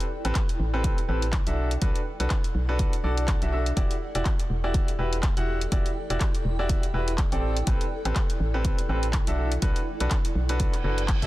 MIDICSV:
0, 0, Header, 1, 6, 480
1, 0, Start_track
1, 0, Key_signature, 1, "minor"
1, 0, Tempo, 487805
1, 1789, Time_signature, 4, 2, 24, 8
1, 11088, End_track
2, 0, Start_track
2, 0, Title_t, "Ambient pad"
2, 0, Program_c, 0, 92
2, 0, Note_on_c, 0, 64, 69
2, 0, Note_on_c, 0, 69, 75
2, 0, Note_on_c, 0, 74, 80
2, 0, Note_on_c, 0, 79, 81
2, 1548, Note_off_c, 0, 79, 0
2, 2004, Note_on_c, 0, 78, 70
2, 3708, Note_off_c, 0, 78, 0
2, 4090, Note_on_c, 0, 79, 86
2, 9229, Note_off_c, 0, 79, 0
2, 9495, Note_on_c, 0, 78, 88
2, 11088, Note_off_c, 0, 64, 0
2, 11088, Note_off_c, 0, 69, 0
2, 11088, Note_off_c, 0, 74, 0
2, 11088, Note_off_c, 0, 78, 0
2, 11088, End_track
3, 0, Start_track
3, 0, Title_t, "Grand piano"
3, 0, Program_c, 1, 0
3, 243, Note_on_c, 1, 60, 92
3, 243, Note_on_c, 1, 67, 83
3, 244, Note_on_c, 1, 69, 80
3, 244, Note_on_c, 1, 71, 100
3, 374, Note_off_c, 1, 60, 0
3, 375, Note_off_c, 1, 67, 0
3, 375, Note_off_c, 1, 69, 0
3, 375, Note_off_c, 1, 71, 0
3, 724, Note_on_c, 1, 60, 90
3, 724, Note_on_c, 1, 67, 82
3, 724, Note_on_c, 1, 69, 83
3, 724, Note_on_c, 1, 71, 98
3, 953, Note_off_c, 1, 60, 0
3, 953, Note_off_c, 1, 67, 0
3, 953, Note_off_c, 1, 69, 0
3, 953, Note_off_c, 1, 71, 0
3, 1068, Note_on_c, 1, 67, 65
3, 1068, Note_on_c, 1, 69, 69
3, 1069, Note_on_c, 1, 60, 72
3, 1069, Note_on_c, 1, 71, 83
3, 1225, Note_off_c, 1, 60, 0
3, 1225, Note_off_c, 1, 67, 0
3, 1225, Note_off_c, 1, 69, 0
3, 1226, Note_off_c, 1, 71, 0
3, 1444, Note_on_c, 1, 62, 77
3, 1444, Note_on_c, 1, 66, 72
3, 1445, Note_on_c, 1, 69, 70
3, 1445, Note_on_c, 1, 76, 84
3, 1673, Note_off_c, 1, 62, 0
3, 1673, Note_off_c, 1, 66, 0
3, 1673, Note_off_c, 1, 69, 0
3, 1673, Note_off_c, 1, 76, 0
3, 1787, Note_on_c, 1, 62, 76
3, 1787, Note_on_c, 1, 69, 71
3, 1787, Note_on_c, 1, 71, 91
3, 1788, Note_on_c, 1, 66, 71
3, 1945, Note_off_c, 1, 62, 0
3, 1945, Note_off_c, 1, 66, 0
3, 1945, Note_off_c, 1, 69, 0
3, 1945, Note_off_c, 1, 71, 0
3, 2163, Note_on_c, 1, 71, 98
3, 2164, Note_on_c, 1, 62, 88
3, 2164, Note_on_c, 1, 66, 84
3, 2164, Note_on_c, 1, 69, 86
3, 2295, Note_off_c, 1, 62, 0
3, 2295, Note_off_c, 1, 66, 0
3, 2295, Note_off_c, 1, 69, 0
3, 2295, Note_off_c, 1, 71, 0
3, 2645, Note_on_c, 1, 62, 87
3, 2645, Note_on_c, 1, 66, 82
3, 2645, Note_on_c, 1, 69, 84
3, 2645, Note_on_c, 1, 71, 95
3, 2873, Note_off_c, 1, 62, 0
3, 2873, Note_off_c, 1, 69, 0
3, 2873, Note_off_c, 1, 71, 0
3, 2874, Note_off_c, 1, 66, 0
3, 2989, Note_on_c, 1, 62, 77
3, 2989, Note_on_c, 1, 66, 71
3, 2989, Note_on_c, 1, 69, 74
3, 2989, Note_on_c, 1, 74, 85
3, 3332, Note_off_c, 1, 66, 0
3, 3332, Note_off_c, 1, 69, 0
3, 3332, Note_off_c, 1, 74, 0
3, 3333, Note_off_c, 1, 62, 0
3, 3365, Note_on_c, 1, 69, 69
3, 3366, Note_on_c, 1, 62, 75
3, 3366, Note_on_c, 1, 66, 70
3, 3366, Note_on_c, 1, 76, 82
3, 3453, Note_off_c, 1, 62, 0
3, 3453, Note_off_c, 1, 66, 0
3, 3453, Note_off_c, 1, 69, 0
3, 3453, Note_off_c, 1, 76, 0
3, 3468, Note_on_c, 1, 69, 65
3, 3469, Note_on_c, 1, 62, 71
3, 3469, Note_on_c, 1, 66, 63
3, 3469, Note_on_c, 1, 76, 78
3, 3625, Note_off_c, 1, 69, 0
3, 3626, Note_off_c, 1, 62, 0
3, 3626, Note_off_c, 1, 66, 0
3, 3626, Note_off_c, 1, 76, 0
3, 3708, Note_on_c, 1, 67, 73
3, 3708, Note_on_c, 1, 74, 83
3, 3709, Note_on_c, 1, 64, 77
3, 3709, Note_on_c, 1, 66, 72
3, 3865, Note_off_c, 1, 67, 0
3, 3865, Note_off_c, 1, 74, 0
3, 3866, Note_off_c, 1, 64, 0
3, 3866, Note_off_c, 1, 66, 0
3, 4085, Note_on_c, 1, 64, 90
3, 4085, Note_on_c, 1, 66, 80
3, 4086, Note_on_c, 1, 67, 82
3, 4086, Note_on_c, 1, 74, 99
3, 4216, Note_off_c, 1, 64, 0
3, 4216, Note_off_c, 1, 66, 0
3, 4216, Note_off_c, 1, 67, 0
3, 4216, Note_off_c, 1, 74, 0
3, 4565, Note_on_c, 1, 64, 86
3, 4565, Note_on_c, 1, 66, 80
3, 4565, Note_on_c, 1, 67, 81
3, 4565, Note_on_c, 1, 74, 96
3, 4793, Note_off_c, 1, 74, 0
3, 4794, Note_off_c, 1, 64, 0
3, 4794, Note_off_c, 1, 66, 0
3, 4794, Note_off_c, 1, 67, 0
3, 4908, Note_on_c, 1, 64, 75
3, 4908, Note_on_c, 1, 66, 67
3, 4908, Note_on_c, 1, 67, 69
3, 4908, Note_on_c, 1, 71, 84
3, 5065, Note_off_c, 1, 64, 0
3, 5065, Note_off_c, 1, 66, 0
3, 5065, Note_off_c, 1, 67, 0
3, 5065, Note_off_c, 1, 71, 0
3, 5284, Note_on_c, 1, 64, 77
3, 5284, Note_on_c, 1, 66, 73
3, 5284, Note_on_c, 1, 67, 74
3, 5284, Note_on_c, 1, 78, 88
3, 5513, Note_off_c, 1, 64, 0
3, 5513, Note_off_c, 1, 66, 0
3, 5513, Note_off_c, 1, 67, 0
3, 5513, Note_off_c, 1, 78, 0
3, 5627, Note_on_c, 1, 64, 77
3, 5627, Note_on_c, 1, 66, 72
3, 5628, Note_on_c, 1, 67, 73
3, 5628, Note_on_c, 1, 74, 86
3, 5785, Note_off_c, 1, 64, 0
3, 5785, Note_off_c, 1, 66, 0
3, 5785, Note_off_c, 1, 67, 0
3, 5785, Note_off_c, 1, 74, 0
3, 6003, Note_on_c, 1, 64, 89
3, 6004, Note_on_c, 1, 66, 85
3, 6004, Note_on_c, 1, 67, 81
3, 6004, Note_on_c, 1, 74, 101
3, 6135, Note_off_c, 1, 64, 0
3, 6135, Note_off_c, 1, 66, 0
3, 6135, Note_off_c, 1, 67, 0
3, 6135, Note_off_c, 1, 74, 0
3, 6485, Note_on_c, 1, 64, 91
3, 6485, Note_on_c, 1, 66, 81
3, 6485, Note_on_c, 1, 67, 84
3, 6485, Note_on_c, 1, 74, 99
3, 6714, Note_off_c, 1, 64, 0
3, 6714, Note_off_c, 1, 66, 0
3, 6714, Note_off_c, 1, 67, 0
3, 6714, Note_off_c, 1, 74, 0
3, 6829, Note_on_c, 1, 64, 74
3, 6829, Note_on_c, 1, 66, 69
3, 6829, Note_on_c, 1, 67, 66
3, 6829, Note_on_c, 1, 71, 82
3, 6985, Note_off_c, 1, 64, 0
3, 6986, Note_off_c, 1, 66, 0
3, 6986, Note_off_c, 1, 67, 0
3, 6986, Note_off_c, 1, 71, 0
3, 7204, Note_on_c, 1, 60, 82
3, 7204, Note_on_c, 1, 74, 88
3, 7205, Note_on_c, 1, 67, 72
3, 7205, Note_on_c, 1, 69, 72
3, 7433, Note_off_c, 1, 60, 0
3, 7433, Note_off_c, 1, 67, 0
3, 7433, Note_off_c, 1, 69, 0
3, 7433, Note_off_c, 1, 74, 0
3, 7547, Note_on_c, 1, 67, 75
3, 7547, Note_on_c, 1, 69, 72
3, 7547, Note_on_c, 1, 71, 88
3, 7548, Note_on_c, 1, 60, 80
3, 7705, Note_off_c, 1, 60, 0
3, 7705, Note_off_c, 1, 67, 0
3, 7705, Note_off_c, 1, 69, 0
3, 7705, Note_off_c, 1, 71, 0
3, 7925, Note_on_c, 1, 60, 90
3, 7925, Note_on_c, 1, 67, 84
3, 7925, Note_on_c, 1, 69, 81
3, 7925, Note_on_c, 1, 71, 99
3, 8055, Note_off_c, 1, 60, 0
3, 8055, Note_off_c, 1, 67, 0
3, 8056, Note_off_c, 1, 69, 0
3, 8056, Note_off_c, 1, 71, 0
3, 8405, Note_on_c, 1, 67, 83
3, 8405, Note_on_c, 1, 69, 80
3, 8405, Note_on_c, 1, 71, 98
3, 8406, Note_on_c, 1, 60, 88
3, 8634, Note_off_c, 1, 60, 0
3, 8634, Note_off_c, 1, 67, 0
3, 8634, Note_off_c, 1, 69, 0
3, 8634, Note_off_c, 1, 71, 0
3, 8750, Note_on_c, 1, 60, 76
3, 8750, Note_on_c, 1, 67, 66
3, 8750, Note_on_c, 1, 69, 69
3, 8750, Note_on_c, 1, 71, 86
3, 8906, Note_off_c, 1, 60, 0
3, 8906, Note_off_c, 1, 67, 0
3, 8906, Note_off_c, 1, 69, 0
3, 8906, Note_off_c, 1, 71, 0
3, 9126, Note_on_c, 1, 62, 80
3, 9126, Note_on_c, 1, 66, 72
3, 9126, Note_on_c, 1, 69, 71
3, 9126, Note_on_c, 1, 76, 86
3, 9354, Note_off_c, 1, 62, 0
3, 9354, Note_off_c, 1, 66, 0
3, 9354, Note_off_c, 1, 69, 0
3, 9354, Note_off_c, 1, 76, 0
3, 9469, Note_on_c, 1, 62, 76
3, 9469, Note_on_c, 1, 66, 75
3, 9469, Note_on_c, 1, 69, 72
3, 9469, Note_on_c, 1, 71, 88
3, 9625, Note_off_c, 1, 62, 0
3, 9626, Note_off_c, 1, 66, 0
3, 9626, Note_off_c, 1, 69, 0
3, 9626, Note_off_c, 1, 71, 0
3, 9845, Note_on_c, 1, 62, 94
3, 9845, Note_on_c, 1, 66, 83
3, 9845, Note_on_c, 1, 69, 84
3, 9845, Note_on_c, 1, 71, 101
3, 9975, Note_off_c, 1, 62, 0
3, 9975, Note_off_c, 1, 66, 0
3, 9975, Note_off_c, 1, 69, 0
3, 9975, Note_off_c, 1, 71, 0
3, 10325, Note_on_c, 1, 69, 84
3, 10325, Note_on_c, 1, 71, 102
3, 10326, Note_on_c, 1, 62, 90
3, 10326, Note_on_c, 1, 66, 82
3, 10554, Note_off_c, 1, 62, 0
3, 10554, Note_off_c, 1, 66, 0
3, 10554, Note_off_c, 1, 69, 0
3, 10554, Note_off_c, 1, 71, 0
3, 10668, Note_on_c, 1, 62, 72
3, 10668, Note_on_c, 1, 66, 69
3, 10668, Note_on_c, 1, 69, 68
3, 10669, Note_on_c, 1, 71, 82
3, 10825, Note_off_c, 1, 62, 0
3, 10825, Note_off_c, 1, 66, 0
3, 10825, Note_off_c, 1, 69, 0
3, 10826, Note_off_c, 1, 71, 0
3, 11045, Note_on_c, 1, 66, 72
3, 11046, Note_on_c, 1, 62, 78
3, 11046, Note_on_c, 1, 69, 75
3, 11046, Note_on_c, 1, 76, 89
3, 11088, Note_off_c, 1, 62, 0
3, 11088, Note_off_c, 1, 66, 0
3, 11088, Note_off_c, 1, 69, 0
3, 11088, Note_off_c, 1, 76, 0
3, 11088, End_track
4, 0, Start_track
4, 0, Title_t, "FM bass"
4, 0, Program_c, 2, 39
4, 244, Note_on_c, 2, 33, 77
4, 321, Note_off_c, 2, 33, 0
4, 587, Note_on_c, 2, 33, 98
4, 907, Note_off_c, 2, 33, 0
4, 1068, Note_on_c, 2, 33, 84
4, 1387, Note_off_c, 2, 33, 0
4, 1444, Note_on_c, 2, 35, 78
4, 1744, Note_off_c, 2, 35, 0
4, 1788, Note_on_c, 2, 35, 96
4, 1889, Note_off_c, 2, 35, 0
4, 2164, Note_on_c, 2, 35, 75
4, 2241, Note_off_c, 2, 35, 0
4, 2508, Note_on_c, 2, 35, 101
4, 2827, Note_off_c, 2, 35, 0
4, 2989, Note_on_c, 2, 35, 84
4, 3308, Note_off_c, 2, 35, 0
4, 3364, Note_on_c, 2, 35, 75
4, 3665, Note_off_c, 2, 35, 0
4, 3708, Note_on_c, 2, 28, 96
4, 3809, Note_off_c, 2, 28, 0
4, 4085, Note_on_c, 2, 28, 75
4, 4161, Note_off_c, 2, 28, 0
4, 4428, Note_on_c, 2, 28, 95
4, 4748, Note_off_c, 2, 28, 0
4, 4908, Note_on_c, 2, 28, 81
4, 5227, Note_off_c, 2, 28, 0
4, 5284, Note_on_c, 2, 28, 74
4, 5584, Note_off_c, 2, 28, 0
4, 5627, Note_on_c, 2, 28, 98
4, 5728, Note_off_c, 2, 28, 0
4, 6003, Note_on_c, 2, 28, 75
4, 6080, Note_off_c, 2, 28, 0
4, 6346, Note_on_c, 2, 28, 98
4, 6666, Note_off_c, 2, 28, 0
4, 6827, Note_on_c, 2, 28, 79
4, 7147, Note_off_c, 2, 28, 0
4, 7202, Note_on_c, 2, 33, 78
4, 7504, Note_off_c, 2, 33, 0
4, 7547, Note_on_c, 2, 33, 97
4, 7648, Note_off_c, 2, 33, 0
4, 7923, Note_on_c, 2, 33, 80
4, 8000, Note_off_c, 2, 33, 0
4, 8267, Note_on_c, 2, 33, 104
4, 8587, Note_off_c, 2, 33, 0
4, 8747, Note_on_c, 2, 33, 81
4, 9067, Note_off_c, 2, 33, 0
4, 9125, Note_on_c, 2, 35, 75
4, 9425, Note_off_c, 2, 35, 0
4, 9469, Note_on_c, 2, 35, 98
4, 9569, Note_off_c, 2, 35, 0
4, 9846, Note_on_c, 2, 35, 76
4, 9922, Note_off_c, 2, 35, 0
4, 10188, Note_on_c, 2, 35, 101
4, 10507, Note_off_c, 2, 35, 0
4, 10668, Note_on_c, 2, 30, 86
4, 10987, Note_off_c, 2, 30, 0
4, 11044, Note_on_c, 2, 30, 77
4, 11088, Note_off_c, 2, 30, 0
4, 11088, End_track
5, 0, Start_track
5, 0, Title_t, "Reverse cymbal"
5, 0, Program_c, 3, 119
5, 10428, Note_on_c, 3, 60, 60
5, 11088, Note_off_c, 3, 60, 0
5, 11088, End_track
6, 0, Start_track
6, 0, Title_t, "Drums"
6, 4, Note_on_c, 9, 42, 53
6, 102, Note_off_c, 9, 42, 0
6, 244, Note_on_c, 9, 42, 34
6, 343, Note_off_c, 9, 42, 0
6, 344, Note_on_c, 9, 39, 113
6, 347, Note_on_c, 9, 42, 75
6, 348, Note_on_c, 9, 36, 115
6, 442, Note_off_c, 9, 39, 0
6, 446, Note_off_c, 9, 36, 0
6, 446, Note_off_c, 9, 42, 0
6, 484, Note_on_c, 9, 42, 50
6, 583, Note_off_c, 9, 42, 0
6, 828, Note_on_c, 9, 36, 123
6, 828, Note_on_c, 9, 42, 76
6, 926, Note_off_c, 9, 36, 0
6, 927, Note_off_c, 9, 42, 0
6, 965, Note_on_c, 9, 42, 49
6, 1064, Note_off_c, 9, 42, 0
6, 1204, Note_on_c, 9, 42, 33
6, 1303, Note_off_c, 9, 42, 0
6, 1304, Note_on_c, 9, 39, 117
6, 1307, Note_on_c, 9, 42, 71
6, 1308, Note_on_c, 9, 36, 119
6, 1403, Note_off_c, 9, 39, 0
6, 1406, Note_off_c, 9, 36, 0
6, 1406, Note_off_c, 9, 42, 0
6, 1443, Note_on_c, 9, 42, 50
6, 1542, Note_off_c, 9, 42, 0
6, 1684, Note_on_c, 9, 42, 34
6, 1783, Note_off_c, 9, 42, 0
6, 1787, Note_on_c, 9, 42, 74
6, 1788, Note_on_c, 9, 36, 123
6, 1885, Note_off_c, 9, 42, 0
6, 1887, Note_off_c, 9, 36, 0
6, 1924, Note_on_c, 9, 42, 50
6, 2022, Note_off_c, 9, 42, 0
6, 2165, Note_on_c, 9, 42, 34
6, 2263, Note_off_c, 9, 42, 0
6, 2263, Note_on_c, 9, 39, 111
6, 2267, Note_on_c, 9, 42, 70
6, 2268, Note_on_c, 9, 36, 112
6, 2362, Note_off_c, 9, 39, 0
6, 2365, Note_off_c, 9, 42, 0
6, 2367, Note_off_c, 9, 36, 0
6, 2404, Note_on_c, 9, 42, 46
6, 2502, Note_off_c, 9, 42, 0
6, 2748, Note_on_c, 9, 36, 114
6, 2748, Note_on_c, 9, 42, 74
6, 2846, Note_off_c, 9, 36, 0
6, 2846, Note_off_c, 9, 42, 0
6, 2884, Note_on_c, 9, 42, 49
6, 2983, Note_off_c, 9, 42, 0
6, 3124, Note_on_c, 9, 42, 34
6, 3222, Note_off_c, 9, 42, 0
6, 3224, Note_on_c, 9, 39, 113
6, 3228, Note_on_c, 9, 36, 116
6, 3228, Note_on_c, 9, 42, 72
6, 3323, Note_off_c, 9, 39, 0
6, 3326, Note_off_c, 9, 36, 0
6, 3326, Note_off_c, 9, 42, 0
6, 3364, Note_on_c, 9, 42, 49
6, 3462, Note_off_c, 9, 42, 0
6, 3605, Note_on_c, 9, 42, 33
6, 3703, Note_off_c, 9, 42, 0
6, 3708, Note_on_c, 9, 36, 117
6, 3708, Note_on_c, 9, 42, 73
6, 3806, Note_off_c, 9, 36, 0
6, 3806, Note_off_c, 9, 42, 0
6, 3844, Note_on_c, 9, 42, 50
6, 3943, Note_off_c, 9, 42, 0
6, 4084, Note_on_c, 9, 42, 36
6, 4182, Note_off_c, 9, 42, 0
6, 4185, Note_on_c, 9, 39, 108
6, 4188, Note_on_c, 9, 36, 117
6, 4188, Note_on_c, 9, 42, 72
6, 4283, Note_off_c, 9, 39, 0
6, 4286, Note_off_c, 9, 36, 0
6, 4286, Note_off_c, 9, 42, 0
6, 4325, Note_on_c, 9, 42, 49
6, 4423, Note_off_c, 9, 42, 0
6, 4668, Note_on_c, 9, 36, 117
6, 4668, Note_on_c, 9, 42, 75
6, 4766, Note_off_c, 9, 36, 0
6, 4766, Note_off_c, 9, 42, 0
6, 4805, Note_on_c, 9, 42, 47
6, 4903, Note_off_c, 9, 42, 0
6, 5044, Note_on_c, 9, 42, 33
6, 5143, Note_off_c, 9, 42, 0
6, 5144, Note_on_c, 9, 39, 105
6, 5147, Note_on_c, 9, 42, 74
6, 5148, Note_on_c, 9, 36, 111
6, 5243, Note_off_c, 9, 39, 0
6, 5246, Note_off_c, 9, 36, 0
6, 5246, Note_off_c, 9, 42, 0
6, 5284, Note_on_c, 9, 42, 52
6, 5383, Note_off_c, 9, 42, 0
6, 5525, Note_on_c, 9, 42, 35
6, 5623, Note_off_c, 9, 42, 0
6, 5627, Note_on_c, 9, 42, 75
6, 5628, Note_on_c, 9, 36, 116
6, 5726, Note_off_c, 9, 36, 0
6, 5726, Note_off_c, 9, 42, 0
6, 5764, Note_on_c, 9, 42, 53
6, 5862, Note_off_c, 9, 42, 0
6, 6005, Note_on_c, 9, 42, 34
6, 6103, Note_off_c, 9, 42, 0
6, 6104, Note_on_c, 9, 39, 105
6, 6107, Note_on_c, 9, 36, 109
6, 6108, Note_on_c, 9, 42, 70
6, 6203, Note_off_c, 9, 39, 0
6, 6206, Note_off_c, 9, 36, 0
6, 6206, Note_off_c, 9, 42, 0
6, 6244, Note_on_c, 9, 42, 50
6, 6343, Note_off_c, 9, 42, 0
6, 6587, Note_on_c, 9, 36, 105
6, 6587, Note_on_c, 9, 42, 79
6, 6685, Note_off_c, 9, 42, 0
6, 6686, Note_off_c, 9, 36, 0
6, 6724, Note_on_c, 9, 42, 48
6, 6822, Note_off_c, 9, 42, 0
6, 6964, Note_on_c, 9, 42, 34
6, 7062, Note_off_c, 9, 42, 0
6, 7064, Note_on_c, 9, 39, 109
6, 7067, Note_on_c, 9, 36, 106
6, 7067, Note_on_c, 9, 42, 76
6, 7162, Note_off_c, 9, 39, 0
6, 7166, Note_off_c, 9, 36, 0
6, 7166, Note_off_c, 9, 42, 0
6, 7204, Note_on_c, 9, 42, 52
6, 7302, Note_off_c, 9, 42, 0
6, 7444, Note_on_c, 9, 42, 34
6, 7542, Note_off_c, 9, 42, 0
6, 7546, Note_on_c, 9, 42, 81
6, 7548, Note_on_c, 9, 36, 111
6, 7645, Note_off_c, 9, 42, 0
6, 7646, Note_off_c, 9, 36, 0
6, 7684, Note_on_c, 9, 42, 57
6, 7783, Note_off_c, 9, 42, 0
6, 7924, Note_on_c, 9, 42, 35
6, 8023, Note_off_c, 9, 42, 0
6, 8025, Note_on_c, 9, 39, 113
6, 8028, Note_on_c, 9, 36, 110
6, 8028, Note_on_c, 9, 42, 75
6, 8123, Note_off_c, 9, 39, 0
6, 8126, Note_off_c, 9, 36, 0
6, 8126, Note_off_c, 9, 42, 0
6, 8165, Note_on_c, 9, 42, 51
6, 8263, Note_off_c, 9, 42, 0
6, 8508, Note_on_c, 9, 36, 105
6, 8508, Note_on_c, 9, 42, 82
6, 8606, Note_off_c, 9, 36, 0
6, 8606, Note_off_c, 9, 42, 0
6, 8644, Note_on_c, 9, 42, 54
6, 8743, Note_off_c, 9, 42, 0
6, 8884, Note_on_c, 9, 42, 35
6, 8983, Note_off_c, 9, 42, 0
6, 8984, Note_on_c, 9, 39, 115
6, 8987, Note_on_c, 9, 42, 77
6, 8988, Note_on_c, 9, 36, 109
6, 9083, Note_off_c, 9, 39, 0
6, 9086, Note_off_c, 9, 42, 0
6, 9087, Note_off_c, 9, 36, 0
6, 9124, Note_on_c, 9, 42, 55
6, 9222, Note_off_c, 9, 42, 0
6, 9364, Note_on_c, 9, 42, 36
6, 9462, Note_off_c, 9, 42, 0
6, 9467, Note_on_c, 9, 42, 83
6, 9469, Note_on_c, 9, 36, 117
6, 9565, Note_off_c, 9, 42, 0
6, 9567, Note_off_c, 9, 36, 0
6, 9604, Note_on_c, 9, 42, 57
6, 9702, Note_off_c, 9, 42, 0
6, 9844, Note_on_c, 9, 42, 38
6, 9942, Note_off_c, 9, 42, 0
6, 9944, Note_on_c, 9, 39, 113
6, 9947, Note_on_c, 9, 42, 78
6, 9949, Note_on_c, 9, 36, 110
6, 10042, Note_off_c, 9, 39, 0
6, 10045, Note_off_c, 9, 42, 0
6, 10047, Note_off_c, 9, 36, 0
6, 10084, Note_on_c, 9, 42, 53
6, 10182, Note_off_c, 9, 42, 0
6, 10324, Note_on_c, 9, 42, 37
6, 10423, Note_off_c, 9, 42, 0
6, 10427, Note_on_c, 9, 42, 79
6, 10429, Note_on_c, 9, 36, 110
6, 10526, Note_off_c, 9, 42, 0
6, 10527, Note_off_c, 9, 36, 0
6, 10560, Note_on_c, 9, 39, 36
6, 10564, Note_on_c, 9, 42, 53
6, 10659, Note_off_c, 9, 39, 0
6, 10662, Note_off_c, 9, 42, 0
6, 10804, Note_on_c, 9, 42, 35
6, 10902, Note_off_c, 9, 42, 0
6, 10904, Note_on_c, 9, 39, 118
6, 10908, Note_on_c, 9, 36, 114
6, 10908, Note_on_c, 9, 42, 81
6, 11003, Note_off_c, 9, 39, 0
6, 11006, Note_off_c, 9, 42, 0
6, 11007, Note_off_c, 9, 36, 0
6, 11044, Note_on_c, 9, 36, 57
6, 11044, Note_on_c, 9, 42, 54
6, 11088, Note_off_c, 9, 36, 0
6, 11088, Note_off_c, 9, 42, 0
6, 11088, End_track
0, 0, End_of_file